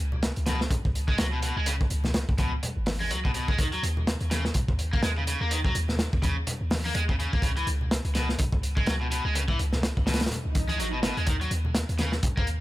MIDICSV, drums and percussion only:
0, 0, Header, 1, 2, 480
1, 0, Start_track
1, 0, Tempo, 480000
1, 1671, Time_signature, 4, 2, 24, 8
1, 12606, End_track
2, 0, Start_track
2, 0, Title_t, "Drums"
2, 120, Note_on_c, 9, 64, 76
2, 220, Note_off_c, 9, 64, 0
2, 226, Note_on_c, 9, 42, 86
2, 228, Note_on_c, 9, 38, 111
2, 326, Note_off_c, 9, 42, 0
2, 328, Note_off_c, 9, 38, 0
2, 362, Note_on_c, 9, 42, 44
2, 462, Note_off_c, 9, 42, 0
2, 463, Note_on_c, 9, 42, 61
2, 464, Note_on_c, 9, 38, 49
2, 467, Note_on_c, 9, 63, 96
2, 563, Note_off_c, 9, 42, 0
2, 564, Note_off_c, 9, 38, 0
2, 567, Note_off_c, 9, 63, 0
2, 610, Note_on_c, 9, 38, 54
2, 705, Note_on_c, 9, 36, 110
2, 705, Note_on_c, 9, 64, 97
2, 706, Note_on_c, 9, 42, 86
2, 710, Note_off_c, 9, 38, 0
2, 805, Note_off_c, 9, 36, 0
2, 805, Note_off_c, 9, 64, 0
2, 806, Note_off_c, 9, 42, 0
2, 850, Note_on_c, 9, 36, 96
2, 950, Note_off_c, 9, 36, 0
2, 953, Note_on_c, 9, 42, 62
2, 1053, Note_off_c, 9, 42, 0
2, 1079, Note_on_c, 9, 36, 87
2, 1179, Note_off_c, 9, 36, 0
2, 1181, Note_on_c, 9, 42, 94
2, 1185, Note_on_c, 9, 38, 119
2, 1281, Note_off_c, 9, 42, 0
2, 1285, Note_off_c, 9, 38, 0
2, 1424, Note_on_c, 9, 42, 72
2, 1524, Note_off_c, 9, 42, 0
2, 1661, Note_on_c, 9, 42, 91
2, 1761, Note_off_c, 9, 42, 0
2, 1808, Note_on_c, 9, 36, 100
2, 1903, Note_on_c, 9, 42, 67
2, 1908, Note_off_c, 9, 36, 0
2, 2003, Note_off_c, 9, 42, 0
2, 2037, Note_on_c, 9, 64, 77
2, 2045, Note_on_c, 9, 38, 47
2, 2047, Note_on_c, 9, 63, 83
2, 2137, Note_off_c, 9, 64, 0
2, 2140, Note_on_c, 9, 42, 77
2, 2144, Note_off_c, 9, 38, 0
2, 2144, Note_on_c, 9, 38, 117
2, 2147, Note_off_c, 9, 63, 0
2, 2240, Note_off_c, 9, 42, 0
2, 2244, Note_off_c, 9, 38, 0
2, 2288, Note_on_c, 9, 36, 93
2, 2380, Note_on_c, 9, 42, 62
2, 2386, Note_off_c, 9, 36, 0
2, 2386, Note_on_c, 9, 36, 95
2, 2386, Note_on_c, 9, 63, 91
2, 2480, Note_off_c, 9, 42, 0
2, 2486, Note_off_c, 9, 36, 0
2, 2486, Note_off_c, 9, 63, 0
2, 2628, Note_on_c, 9, 42, 86
2, 2632, Note_on_c, 9, 64, 85
2, 2728, Note_off_c, 9, 42, 0
2, 2732, Note_off_c, 9, 64, 0
2, 2861, Note_on_c, 9, 46, 77
2, 2868, Note_on_c, 9, 38, 112
2, 2870, Note_on_c, 9, 63, 99
2, 2961, Note_off_c, 9, 46, 0
2, 2968, Note_off_c, 9, 38, 0
2, 2970, Note_off_c, 9, 63, 0
2, 3004, Note_on_c, 9, 63, 85
2, 3104, Note_off_c, 9, 63, 0
2, 3106, Note_on_c, 9, 42, 85
2, 3206, Note_off_c, 9, 42, 0
2, 3249, Note_on_c, 9, 36, 84
2, 3343, Note_on_c, 9, 42, 61
2, 3349, Note_off_c, 9, 36, 0
2, 3443, Note_off_c, 9, 42, 0
2, 3484, Note_on_c, 9, 36, 96
2, 3584, Note_off_c, 9, 36, 0
2, 3584, Note_on_c, 9, 42, 89
2, 3587, Note_on_c, 9, 36, 116
2, 3684, Note_off_c, 9, 42, 0
2, 3687, Note_off_c, 9, 36, 0
2, 3723, Note_on_c, 9, 42, 45
2, 3823, Note_off_c, 9, 42, 0
2, 3835, Note_on_c, 9, 42, 72
2, 3935, Note_off_c, 9, 42, 0
2, 3970, Note_on_c, 9, 64, 79
2, 4070, Note_off_c, 9, 64, 0
2, 4073, Note_on_c, 9, 38, 115
2, 4074, Note_on_c, 9, 42, 78
2, 4173, Note_off_c, 9, 38, 0
2, 4174, Note_off_c, 9, 42, 0
2, 4205, Note_on_c, 9, 42, 43
2, 4305, Note_off_c, 9, 42, 0
2, 4310, Note_on_c, 9, 42, 67
2, 4311, Note_on_c, 9, 63, 82
2, 4312, Note_on_c, 9, 38, 51
2, 4410, Note_off_c, 9, 42, 0
2, 4411, Note_off_c, 9, 63, 0
2, 4412, Note_off_c, 9, 38, 0
2, 4449, Note_on_c, 9, 38, 53
2, 4542, Note_on_c, 9, 42, 79
2, 4544, Note_on_c, 9, 64, 87
2, 4549, Note_off_c, 9, 38, 0
2, 4549, Note_on_c, 9, 36, 107
2, 4642, Note_off_c, 9, 42, 0
2, 4644, Note_off_c, 9, 64, 0
2, 4649, Note_off_c, 9, 36, 0
2, 4685, Note_on_c, 9, 36, 93
2, 4785, Note_off_c, 9, 36, 0
2, 4788, Note_on_c, 9, 42, 73
2, 4887, Note_off_c, 9, 42, 0
2, 4935, Note_on_c, 9, 36, 103
2, 5026, Note_on_c, 9, 38, 115
2, 5031, Note_on_c, 9, 42, 91
2, 5035, Note_off_c, 9, 36, 0
2, 5126, Note_off_c, 9, 38, 0
2, 5131, Note_off_c, 9, 42, 0
2, 5272, Note_on_c, 9, 42, 70
2, 5372, Note_off_c, 9, 42, 0
2, 5509, Note_on_c, 9, 42, 85
2, 5609, Note_off_c, 9, 42, 0
2, 5646, Note_on_c, 9, 36, 87
2, 5746, Note_off_c, 9, 36, 0
2, 5750, Note_on_c, 9, 42, 69
2, 5850, Note_off_c, 9, 42, 0
2, 5883, Note_on_c, 9, 64, 67
2, 5890, Note_on_c, 9, 38, 48
2, 5983, Note_off_c, 9, 64, 0
2, 5988, Note_off_c, 9, 38, 0
2, 5988, Note_on_c, 9, 38, 100
2, 5991, Note_on_c, 9, 42, 74
2, 6088, Note_off_c, 9, 38, 0
2, 6091, Note_off_c, 9, 42, 0
2, 6131, Note_on_c, 9, 36, 95
2, 6224, Note_off_c, 9, 36, 0
2, 6224, Note_on_c, 9, 36, 93
2, 6231, Note_on_c, 9, 63, 81
2, 6235, Note_on_c, 9, 42, 64
2, 6324, Note_off_c, 9, 36, 0
2, 6331, Note_off_c, 9, 63, 0
2, 6335, Note_off_c, 9, 42, 0
2, 6469, Note_on_c, 9, 42, 92
2, 6472, Note_on_c, 9, 64, 89
2, 6569, Note_off_c, 9, 42, 0
2, 6572, Note_off_c, 9, 64, 0
2, 6706, Note_on_c, 9, 63, 96
2, 6711, Note_on_c, 9, 38, 119
2, 6713, Note_on_c, 9, 46, 83
2, 6806, Note_off_c, 9, 63, 0
2, 6811, Note_off_c, 9, 38, 0
2, 6813, Note_off_c, 9, 46, 0
2, 6853, Note_on_c, 9, 63, 80
2, 6947, Note_on_c, 9, 42, 91
2, 6953, Note_off_c, 9, 63, 0
2, 7047, Note_off_c, 9, 42, 0
2, 7090, Note_on_c, 9, 36, 91
2, 7190, Note_off_c, 9, 36, 0
2, 7196, Note_on_c, 9, 42, 63
2, 7296, Note_off_c, 9, 42, 0
2, 7332, Note_on_c, 9, 36, 101
2, 7422, Note_off_c, 9, 36, 0
2, 7422, Note_on_c, 9, 36, 123
2, 7431, Note_on_c, 9, 42, 96
2, 7522, Note_off_c, 9, 36, 0
2, 7531, Note_off_c, 9, 42, 0
2, 7565, Note_on_c, 9, 42, 44
2, 7665, Note_off_c, 9, 42, 0
2, 7670, Note_on_c, 9, 42, 62
2, 7770, Note_off_c, 9, 42, 0
2, 7810, Note_on_c, 9, 64, 71
2, 7910, Note_off_c, 9, 64, 0
2, 7912, Note_on_c, 9, 38, 110
2, 7915, Note_on_c, 9, 42, 84
2, 8012, Note_off_c, 9, 38, 0
2, 8015, Note_off_c, 9, 42, 0
2, 8048, Note_on_c, 9, 42, 46
2, 8148, Note_off_c, 9, 42, 0
2, 8148, Note_on_c, 9, 42, 61
2, 8150, Note_on_c, 9, 63, 79
2, 8151, Note_on_c, 9, 38, 45
2, 8248, Note_off_c, 9, 42, 0
2, 8250, Note_off_c, 9, 63, 0
2, 8251, Note_off_c, 9, 38, 0
2, 8292, Note_on_c, 9, 38, 47
2, 8384, Note_on_c, 9, 64, 88
2, 8387, Note_on_c, 9, 42, 82
2, 8392, Note_off_c, 9, 38, 0
2, 8396, Note_on_c, 9, 36, 115
2, 8484, Note_off_c, 9, 64, 0
2, 8487, Note_off_c, 9, 42, 0
2, 8496, Note_off_c, 9, 36, 0
2, 8525, Note_on_c, 9, 36, 100
2, 8625, Note_off_c, 9, 36, 0
2, 8634, Note_on_c, 9, 42, 65
2, 8734, Note_off_c, 9, 42, 0
2, 8768, Note_on_c, 9, 36, 94
2, 8864, Note_on_c, 9, 42, 83
2, 8868, Note_off_c, 9, 36, 0
2, 8873, Note_on_c, 9, 38, 117
2, 8964, Note_off_c, 9, 42, 0
2, 8973, Note_off_c, 9, 38, 0
2, 9116, Note_on_c, 9, 42, 66
2, 9216, Note_off_c, 9, 42, 0
2, 9353, Note_on_c, 9, 42, 89
2, 9453, Note_off_c, 9, 42, 0
2, 9483, Note_on_c, 9, 36, 89
2, 9583, Note_off_c, 9, 36, 0
2, 9593, Note_on_c, 9, 42, 72
2, 9693, Note_off_c, 9, 42, 0
2, 9726, Note_on_c, 9, 38, 46
2, 9727, Note_on_c, 9, 64, 75
2, 9826, Note_off_c, 9, 38, 0
2, 9827, Note_off_c, 9, 64, 0
2, 9832, Note_on_c, 9, 38, 116
2, 9834, Note_on_c, 9, 42, 86
2, 9932, Note_off_c, 9, 38, 0
2, 9934, Note_off_c, 9, 42, 0
2, 9971, Note_on_c, 9, 36, 99
2, 10066, Note_on_c, 9, 38, 79
2, 10070, Note_on_c, 9, 63, 88
2, 10071, Note_off_c, 9, 36, 0
2, 10073, Note_on_c, 9, 42, 68
2, 10135, Note_off_c, 9, 42, 0
2, 10135, Note_on_c, 9, 42, 70
2, 10141, Note_off_c, 9, 38, 0
2, 10141, Note_on_c, 9, 38, 86
2, 10170, Note_off_c, 9, 63, 0
2, 10198, Note_off_c, 9, 42, 0
2, 10198, Note_on_c, 9, 42, 65
2, 10211, Note_off_c, 9, 38, 0
2, 10211, Note_on_c, 9, 38, 78
2, 10262, Note_off_c, 9, 42, 0
2, 10262, Note_on_c, 9, 42, 59
2, 10265, Note_off_c, 9, 38, 0
2, 10265, Note_on_c, 9, 38, 89
2, 10312, Note_on_c, 9, 64, 101
2, 10316, Note_off_c, 9, 42, 0
2, 10316, Note_on_c, 9, 42, 83
2, 10365, Note_off_c, 9, 38, 0
2, 10412, Note_off_c, 9, 64, 0
2, 10416, Note_off_c, 9, 42, 0
2, 10548, Note_on_c, 9, 63, 90
2, 10550, Note_on_c, 9, 42, 83
2, 10553, Note_on_c, 9, 36, 102
2, 10648, Note_off_c, 9, 63, 0
2, 10650, Note_off_c, 9, 42, 0
2, 10653, Note_off_c, 9, 36, 0
2, 10682, Note_on_c, 9, 63, 84
2, 10692, Note_on_c, 9, 42, 43
2, 10782, Note_off_c, 9, 63, 0
2, 10792, Note_off_c, 9, 42, 0
2, 10797, Note_on_c, 9, 42, 64
2, 10897, Note_off_c, 9, 42, 0
2, 11029, Note_on_c, 9, 38, 107
2, 11030, Note_on_c, 9, 42, 80
2, 11129, Note_off_c, 9, 38, 0
2, 11130, Note_off_c, 9, 42, 0
2, 11172, Note_on_c, 9, 42, 39
2, 11266, Note_off_c, 9, 42, 0
2, 11266, Note_on_c, 9, 42, 96
2, 11274, Note_on_c, 9, 36, 105
2, 11365, Note_off_c, 9, 42, 0
2, 11374, Note_off_c, 9, 36, 0
2, 11412, Note_on_c, 9, 42, 40
2, 11510, Note_off_c, 9, 42, 0
2, 11510, Note_on_c, 9, 42, 69
2, 11610, Note_off_c, 9, 42, 0
2, 11647, Note_on_c, 9, 64, 77
2, 11746, Note_on_c, 9, 38, 118
2, 11747, Note_off_c, 9, 64, 0
2, 11750, Note_on_c, 9, 42, 90
2, 11846, Note_off_c, 9, 38, 0
2, 11850, Note_off_c, 9, 42, 0
2, 11892, Note_on_c, 9, 42, 43
2, 11984, Note_off_c, 9, 42, 0
2, 11984, Note_on_c, 9, 42, 62
2, 11989, Note_on_c, 9, 63, 90
2, 11990, Note_on_c, 9, 38, 47
2, 12084, Note_off_c, 9, 42, 0
2, 12089, Note_off_c, 9, 63, 0
2, 12090, Note_off_c, 9, 38, 0
2, 12122, Note_on_c, 9, 38, 47
2, 12222, Note_off_c, 9, 38, 0
2, 12229, Note_on_c, 9, 42, 88
2, 12231, Note_on_c, 9, 36, 106
2, 12231, Note_on_c, 9, 64, 98
2, 12329, Note_off_c, 9, 42, 0
2, 12331, Note_off_c, 9, 36, 0
2, 12331, Note_off_c, 9, 64, 0
2, 12375, Note_on_c, 9, 36, 97
2, 12470, Note_on_c, 9, 42, 68
2, 12475, Note_off_c, 9, 36, 0
2, 12570, Note_off_c, 9, 42, 0
2, 12606, End_track
0, 0, End_of_file